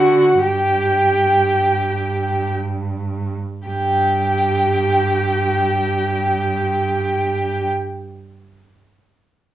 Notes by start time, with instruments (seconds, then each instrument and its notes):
Already playing: cello D3, viola F#4, violin F#5
0.41 cello G2, viola G4, violin G5
3.67 cello G2, viola G4, violin G5